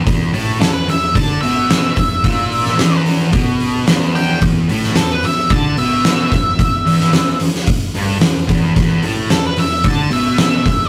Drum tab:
HH |o-o-o-o-o-o-o-o-|o-o-o-o-o-o-o-o-|o-o-o-o-o-o-o-o-|o-o-o-o-o-o-o-o-|
SD |----o-------o---|---oo-------o---|---oo-------o---|---oo--o----o---|
BD |o-------o-----o-|o-------o-------|o-------o-----o-|o-------o-----o-|

HH |o-o-o-o-o-o-o-o-|
SD |----o-------o---|
BD |o-------o-----o-|